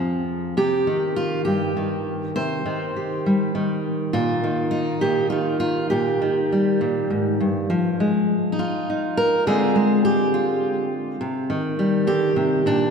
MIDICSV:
0, 0, Header, 1, 2, 480
1, 0, Start_track
1, 0, Key_signature, -3, "minor"
1, 0, Tempo, 594648
1, 458, Time_signature, 6, 3, 24, 8
1, 6692, Tempo, 582524
1, 10494, End_track
2, 0, Start_track
2, 0, Title_t, "Steel-string acoustic guitar"
2, 0, Program_c, 0, 25
2, 0, Note_on_c, 0, 41, 60
2, 0, Note_on_c, 0, 53, 51
2, 0, Note_on_c, 0, 60, 39
2, 0, Note_on_c, 0, 68, 89
2, 177, Note_off_c, 0, 60, 0
2, 430, Note_off_c, 0, 41, 0
2, 433, Note_off_c, 0, 53, 0
2, 459, Note_off_c, 0, 68, 0
2, 460, Note_on_c, 0, 48, 62
2, 464, Note_on_c, 0, 67, 82
2, 703, Note_off_c, 0, 48, 0
2, 703, Note_on_c, 0, 51, 52
2, 936, Note_off_c, 0, 67, 0
2, 939, Note_on_c, 0, 65, 76
2, 1165, Note_off_c, 0, 65, 0
2, 1168, Note_on_c, 0, 67, 66
2, 1181, Note_on_c, 0, 43, 54
2, 1416, Note_off_c, 0, 51, 0
2, 1426, Note_on_c, 0, 51, 47
2, 1879, Note_off_c, 0, 43, 0
2, 1899, Note_off_c, 0, 67, 0
2, 1903, Note_on_c, 0, 72, 91
2, 1906, Note_on_c, 0, 48, 65
2, 2134, Note_off_c, 0, 51, 0
2, 2144, Note_on_c, 0, 51, 53
2, 2148, Note_off_c, 0, 48, 0
2, 2392, Note_on_c, 0, 67, 39
2, 2634, Note_on_c, 0, 55, 55
2, 2855, Note_off_c, 0, 51, 0
2, 2865, Note_on_c, 0, 51, 58
2, 3333, Note_off_c, 0, 67, 0
2, 3336, Note_on_c, 0, 65, 85
2, 3339, Note_off_c, 0, 55, 0
2, 3342, Note_off_c, 0, 72, 0
2, 3342, Note_on_c, 0, 46, 70
2, 3571, Note_off_c, 0, 51, 0
2, 3581, Note_off_c, 0, 46, 0
2, 3581, Note_on_c, 0, 51, 56
2, 3801, Note_on_c, 0, 63, 78
2, 4042, Note_off_c, 0, 65, 0
2, 4045, Note_on_c, 0, 67, 77
2, 4051, Note_on_c, 0, 46, 55
2, 4274, Note_off_c, 0, 67, 0
2, 4277, Note_on_c, 0, 65, 78
2, 4286, Note_off_c, 0, 51, 0
2, 4292, Note_off_c, 0, 46, 0
2, 4296, Note_on_c, 0, 51, 55
2, 4510, Note_off_c, 0, 65, 0
2, 4519, Note_on_c, 0, 65, 82
2, 4524, Note_off_c, 0, 63, 0
2, 4759, Note_off_c, 0, 65, 0
2, 4762, Note_on_c, 0, 67, 78
2, 4775, Note_on_c, 0, 46, 69
2, 5007, Note_off_c, 0, 51, 0
2, 5014, Note_off_c, 0, 46, 0
2, 5017, Note_on_c, 0, 51, 57
2, 5267, Note_on_c, 0, 55, 40
2, 5496, Note_on_c, 0, 46, 56
2, 5734, Note_on_c, 0, 44, 53
2, 5737, Note_off_c, 0, 46, 0
2, 5974, Note_off_c, 0, 44, 0
2, 5977, Note_on_c, 0, 43, 55
2, 6212, Note_off_c, 0, 67, 0
2, 6214, Note_on_c, 0, 53, 70
2, 6217, Note_off_c, 0, 43, 0
2, 6224, Note_off_c, 0, 55, 0
2, 6456, Note_off_c, 0, 51, 0
2, 6459, Note_on_c, 0, 56, 61
2, 6884, Note_on_c, 0, 63, 57
2, 6940, Note_on_c, 0, 65, 74
2, 7182, Note_off_c, 0, 63, 0
2, 7192, Note_on_c, 0, 63, 46
2, 7420, Note_on_c, 0, 70, 92
2, 7628, Note_off_c, 0, 53, 0
2, 7632, Note_off_c, 0, 56, 0
2, 7637, Note_off_c, 0, 63, 0
2, 7660, Note_off_c, 0, 70, 0
2, 7661, Note_off_c, 0, 65, 0
2, 7663, Note_on_c, 0, 50, 72
2, 7665, Note_on_c, 0, 68, 101
2, 7672, Note_on_c, 0, 56, 48
2, 7677, Note_on_c, 0, 60, 48
2, 7682, Note_on_c, 0, 65, 51
2, 7889, Note_off_c, 0, 56, 0
2, 7899, Note_on_c, 0, 56, 65
2, 8137, Note_off_c, 0, 68, 0
2, 8140, Note_on_c, 0, 67, 85
2, 8371, Note_off_c, 0, 65, 0
2, 8380, Note_on_c, 0, 65, 66
2, 8857, Note_off_c, 0, 67, 0
2, 9066, Note_off_c, 0, 56, 0
2, 9069, Note_off_c, 0, 50, 0
2, 9095, Note_on_c, 0, 48, 71
2, 9096, Note_off_c, 0, 65, 0
2, 9334, Note_off_c, 0, 48, 0
2, 9335, Note_on_c, 0, 51, 66
2, 9572, Note_off_c, 0, 60, 0
2, 9575, Note_on_c, 0, 55, 46
2, 9806, Note_on_c, 0, 50, 61
2, 9810, Note_on_c, 0, 67, 94
2, 10044, Note_off_c, 0, 50, 0
2, 10047, Note_on_c, 0, 48, 61
2, 10289, Note_off_c, 0, 48, 0
2, 10293, Note_on_c, 0, 46, 59
2, 10299, Note_on_c, 0, 62, 85
2, 10494, Note_off_c, 0, 46, 0
2, 10494, Note_off_c, 0, 51, 0
2, 10494, Note_off_c, 0, 55, 0
2, 10494, Note_off_c, 0, 62, 0
2, 10494, Note_off_c, 0, 67, 0
2, 10494, End_track
0, 0, End_of_file